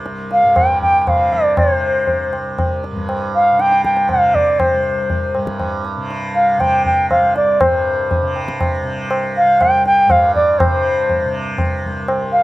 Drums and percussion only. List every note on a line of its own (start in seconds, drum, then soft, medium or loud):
0.06 tabla te medium
0.31 tabla te medium
0.56 tabla na medium
0.56 tabla ge medium
0.82 tabla ge soft
1.07 tabla na medium
1.07 tabla ge medium
1.33 tabla ge soft
1.57 tabla na medium
1.57 tabla ge medium
2.07 tabla tin medium
2.07 tabla ge medium
2.33 tabla na medium
2.58 tabla na medium
2.58 tabla ge medium
2.84 tabla te medium
2.96 tabla ge soft
3.09 tabla na medium
3.59 tabla te medium
3.72 tabla te medium
3.84 tabla ke soft
3.97 tabla te medium
4.09 tabla na medium
4.09 tabla ge medium
4.34 tabla ge soft
4.60 tabla na loud
4.60 tabla ge medium
5.10 tabla tin medium
5.10 tabla ge medium
5.35 tabla na soft
5.47 tabla ke medium
5.60 tabla na medium
5.60 tabla ge medium
5.85 tabla te medium
6.10 tabla te medium
6.35 tabla te soft
6.60 tabla na medium
6.60 tabla ge medium
6.85 tabla ge soft
7.11 tabla na medium
7.11 tabla ge medium
7.36 tabla te medium
7.61 tabla na loud
7.61 tabla ge loud
8.11 tabla tin medium
8.11 tabla ge medium
8.36 tabla na medium
8.48 tabla ke medium
8.61 tabla na medium
8.61 tabla ge medium
9.11 tabla na medium
9.61 tabla na medium
9.61 tabla ge medium
9.86 tabla te medium
10.10 tabla na medium
10.10 tabla ge medium
10.36 tabla ge medium
10.60 tabla na loud
10.60 tabla ge medium
11.10 tabla tin medium
11.10 tabla ge medium
11.58 tabla na medium
11.58 tabla ge medium
11.84 tabla ge soft
12.08 tabla na medium